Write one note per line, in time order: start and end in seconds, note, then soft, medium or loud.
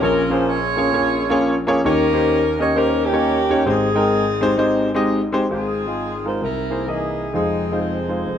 0.01 1.80 A#1 medium
0.01 1.80 A#2 medium
0.01 0.21 A#3 medium
0.01 0.21 C#4 medium
0.01 0.89 C#4 medium
0.01 0.21 F4 medium
0.01 0.47 F4 medium
0.01 0.21 G#4 medium
0.01 0.29 A#4 loud
0.01 0.22 C#5 medium
0.30 0.57 A#3 medium
0.30 0.57 C#4 medium
0.30 0.57 F4 medium
0.30 0.57 G#4 medium
0.30 0.57 C5 medium
0.30 0.46 C5 loud
0.47 1.64 F4 medium
0.47 1.64 G#4 medium
0.47 1.68 C#5 loud
0.76 0.87 A#3 medium
0.76 0.88 C#4 medium
0.76 0.88 F4 medium
0.76 0.88 G#4 medium
0.76 0.88 C#5 medium
0.93 1.22 A#3 medium
0.93 1.22 C#4 medium
0.93 1.22 F4 medium
0.93 1.22 G#4 medium
0.93 1.23 C#5 medium
1.30 1.53 A#3 medium
1.30 1.53 C#4 medium
1.30 1.53 F4 medium
1.30 1.54 G#4 medium
1.30 1.54 C#5 loud
1.67 1.78 A#3 loud
1.67 1.78 C#4 medium
1.67 1.79 F4 medium
1.67 1.79 G#4 medium
1.67 1.79 C#5 loud
1.84 3.63 D#2 medium
1.84 3.63 D#3 medium
1.84 2.04 A#3 medium
1.84 2.72 C#4 medium
1.84 2.04 C#4 medium
1.84 2.04 D#4 medium
1.84 2.72 G4 medium
1.84 2.04 G4 medium
1.84 2.55 A#4 loud
1.84 2.05 C#5 medium
2.12 2.39 A#3 medium
2.12 2.39 C#4 medium
2.12 2.40 D#4 medium
2.12 2.40 G4 medium
2.12 2.40 C5 medium
2.59 2.70 A#3 medium
2.59 2.70 C#4 medium
2.59 2.70 D#4 medium
2.59 2.70 G4 medium
2.59 2.77 C#5 loud
2.59 2.71 D#5 medium
2.75 3.04 A#3 medium
2.75 3.04 C#4 medium
2.75 3.05 D#4 medium
2.75 3.05 G4 medium
2.75 3.04 G4 medium
2.75 3.06 A#4 loud
2.75 3.05 C5 medium
3.05 3.63 A#3 medium
3.05 3.63 C#4 medium
3.05 3.67 G4 loud
3.12 3.35 A#3 medium
3.12 3.36 C#4 medium
3.12 3.36 D#4 medium
3.12 3.36 G4 medium
3.12 3.36 C#5 medium
3.49 3.61 A#3 medium
3.49 3.61 C#4 medium
3.49 3.61 D#4 medium
3.49 3.61 G4 medium
3.49 3.62 C#5 medium
3.66 5.45 G#1 medium
3.66 5.46 G#2 medium
3.66 3.86 G#3 medium
3.66 3.86 C4 medium
3.66 5.00 C4 medium
3.66 3.86 D#4 medium
3.66 5.00 D#4 medium
3.66 3.86 G4 medium
3.66 5.01 G#4 loud
3.66 3.86 C5 medium
3.95 4.22 G#3 medium
3.95 4.22 C4 medium
3.95 4.22 D#4 medium
3.95 4.23 A#4 medium
3.95 4.22 G5 medium
4.41 4.52 G#3 medium
4.41 4.53 C4 medium
4.41 4.53 D#4 medium
4.41 4.53 G4 medium
4.41 4.53 C5 loud
4.57 4.87 G#3 medium
4.57 4.87 C4 medium
4.57 4.87 D#4 medium
4.57 4.88 G4 medium
4.57 4.88 C5 loud
4.94 5.18 G#3 medium
4.94 5.18 C4 medium
4.94 5.19 D#4 medium
4.94 5.19 G4 medium
4.94 5.19 D#5 loud
5.32 5.44 G#3 medium
5.32 5.44 C4 medium
5.32 5.44 D#4 medium
5.32 5.45 G4 medium
5.32 5.45 C5 loud
5.49 6.38 G#1 medium
5.49 6.38 G#2 medium
5.49 5.79 G#3 medium
5.49 6.38 C4 medium
5.49 5.79 D#4 medium
5.49 5.79 F4 medium
5.49 6.38 F4 medium
5.49 6.22 G#4 medium
5.49 5.80 C5 medium
5.86 6.10 G#3 medium
5.86 6.10 D#4 medium
5.86 6.11 F4 medium
5.86 6.11 G#4 medium
6.24 6.41 G#3 medium
6.24 6.42 D#4 medium
6.24 6.42 F4 medium
6.24 6.42 A#4 medium
6.24 6.42 C5 medium
6.42 7.30 C2 medium
6.42 7.30 C3 medium
6.42 6.88 D#4 medium
6.42 6.88 E4 medium
6.42 6.88 A#4 medium
6.70 6.82 A#3 medium
6.70 6.82 E4 medium
6.70 6.82 G#4 medium
6.70 6.82 C5 medium
6.86 7.22 E3 medium
6.86 7.22 A#3 medium
6.86 7.31 D#4 medium
6.86 7.31 E4 medium
6.86 7.23 G#4 medium
6.86 7.33 G#4 medium
6.86 7.23 D#5 medium
7.33 8.22 F1 medium
7.33 8.22 F2 medium
7.33 7.63 G#3 medium
7.33 8.22 C4 medium
7.33 7.63 D#4 medium
7.33 7.79 D#4 medium
7.33 7.64 F4 medium
7.33 7.77 G#4 medium
7.33 7.64 C5 medium
7.71 7.95 G#3 medium
7.71 7.95 D#4 medium
7.71 7.95 F4 medium
7.71 7.95 C5 medium
7.80 8.38 D#4 medium
7.80 8.38 G#4 medium
7.80 8.38 C5 medium
8.08 8.25 G#3 medium
8.08 8.26 D#4 medium
8.08 8.26 F4 medium
8.08 8.26 C5 medium
8.26 8.38 F1 medium
8.26 8.38 F2 medium